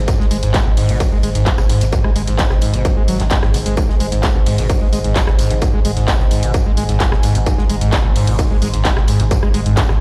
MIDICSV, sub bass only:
0, 0, Header, 1, 2, 480
1, 0, Start_track
1, 0, Key_signature, 5, "minor"
1, 0, Tempo, 461538
1, 83, Time_signature, 4, 2, 24, 8
1, 10406, End_track
2, 0, Start_track
2, 0, Title_t, "Sub bass"
2, 0, Program_c, 0, 38
2, 321, Note_on_c, 0, 32, 100
2, 439, Note_off_c, 0, 32, 0
2, 445, Note_on_c, 0, 32, 81
2, 560, Note_off_c, 0, 32, 0
2, 686, Note_on_c, 0, 32, 75
2, 796, Note_off_c, 0, 32, 0
2, 802, Note_on_c, 0, 32, 101
2, 919, Note_off_c, 0, 32, 0
2, 925, Note_on_c, 0, 32, 77
2, 1041, Note_off_c, 0, 32, 0
2, 1281, Note_on_c, 0, 32, 100
2, 1398, Note_off_c, 0, 32, 0
2, 1404, Note_on_c, 0, 32, 82
2, 1520, Note_off_c, 0, 32, 0
2, 1646, Note_on_c, 0, 32, 75
2, 1757, Note_off_c, 0, 32, 0
2, 1763, Note_on_c, 0, 32, 98
2, 1879, Note_off_c, 0, 32, 0
2, 1886, Note_on_c, 0, 32, 84
2, 2001, Note_off_c, 0, 32, 0
2, 2242, Note_on_c, 0, 32, 101
2, 2358, Note_off_c, 0, 32, 0
2, 2364, Note_on_c, 0, 32, 80
2, 2480, Note_off_c, 0, 32, 0
2, 2605, Note_on_c, 0, 32, 75
2, 2717, Note_off_c, 0, 32, 0
2, 2723, Note_on_c, 0, 32, 99
2, 2840, Note_off_c, 0, 32, 0
2, 2846, Note_on_c, 0, 32, 77
2, 2961, Note_off_c, 0, 32, 0
2, 3202, Note_on_c, 0, 32, 104
2, 3318, Note_off_c, 0, 32, 0
2, 3324, Note_on_c, 0, 32, 83
2, 3440, Note_off_c, 0, 32, 0
2, 3565, Note_on_c, 0, 32, 75
2, 3676, Note_off_c, 0, 32, 0
2, 3682, Note_on_c, 0, 32, 99
2, 3799, Note_off_c, 0, 32, 0
2, 3805, Note_on_c, 0, 32, 80
2, 3921, Note_off_c, 0, 32, 0
2, 4164, Note_on_c, 0, 32, 101
2, 4279, Note_off_c, 0, 32, 0
2, 4285, Note_on_c, 0, 32, 79
2, 4401, Note_off_c, 0, 32, 0
2, 4526, Note_on_c, 0, 32, 77
2, 4636, Note_off_c, 0, 32, 0
2, 4642, Note_on_c, 0, 32, 99
2, 4759, Note_off_c, 0, 32, 0
2, 4765, Note_on_c, 0, 32, 77
2, 4881, Note_off_c, 0, 32, 0
2, 5124, Note_on_c, 0, 32, 99
2, 5240, Note_off_c, 0, 32, 0
2, 5246, Note_on_c, 0, 32, 82
2, 5361, Note_off_c, 0, 32, 0
2, 5487, Note_on_c, 0, 32, 74
2, 5598, Note_off_c, 0, 32, 0
2, 5605, Note_on_c, 0, 32, 100
2, 5721, Note_off_c, 0, 32, 0
2, 5727, Note_on_c, 0, 32, 82
2, 5841, Note_off_c, 0, 32, 0
2, 6083, Note_on_c, 0, 32, 101
2, 6203, Note_off_c, 0, 32, 0
2, 6208, Note_on_c, 0, 32, 81
2, 6322, Note_off_c, 0, 32, 0
2, 6446, Note_on_c, 0, 32, 76
2, 6558, Note_off_c, 0, 32, 0
2, 6564, Note_on_c, 0, 32, 99
2, 6680, Note_off_c, 0, 32, 0
2, 6686, Note_on_c, 0, 32, 80
2, 6801, Note_off_c, 0, 32, 0
2, 7044, Note_on_c, 0, 32, 102
2, 7161, Note_off_c, 0, 32, 0
2, 7167, Note_on_c, 0, 32, 81
2, 7281, Note_off_c, 0, 32, 0
2, 7405, Note_on_c, 0, 32, 76
2, 7518, Note_off_c, 0, 32, 0
2, 7524, Note_on_c, 0, 32, 99
2, 7640, Note_off_c, 0, 32, 0
2, 7646, Note_on_c, 0, 32, 83
2, 7761, Note_off_c, 0, 32, 0
2, 8002, Note_on_c, 0, 32, 100
2, 8119, Note_off_c, 0, 32, 0
2, 8126, Note_on_c, 0, 32, 82
2, 8241, Note_off_c, 0, 32, 0
2, 8365, Note_on_c, 0, 32, 79
2, 8477, Note_off_c, 0, 32, 0
2, 8483, Note_on_c, 0, 32, 100
2, 8599, Note_off_c, 0, 32, 0
2, 8605, Note_on_c, 0, 32, 79
2, 8720, Note_off_c, 0, 32, 0
2, 8964, Note_on_c, 0, 32, 102
2, 9079, Note_off_c, 0, 32, 0
2, 9086, Note_on_c, 0, 32, 83
2, 9201, Note_off_c, 0, 32, 0
2, 9326, Note_on_c, 0, 32, 76
2, 9437, Note_off_c, 0, 32, 0
2, 9443, Note_on_c, 0, 32, 97
2, 9560, Note_off_c, 0, 32, 0
2, 9566, Note_on_c, 0, 32, 84
2, 9681, Note_off_c, 0, 32, 0
2, 9923, Note_on_c, 0, 32, 102
2, 10039, Note_off_c, 0, 32, 0
2, 10045, Note_on_c, 0, 32, 81
2, 10160, Note_off_c, 0, 32, 0
2, 10284, Note_on_c, 0, 32, 79
2, 10395, Note_off_c, 0, 32, 0
2, 10406, End_track
0, 0, End_of_file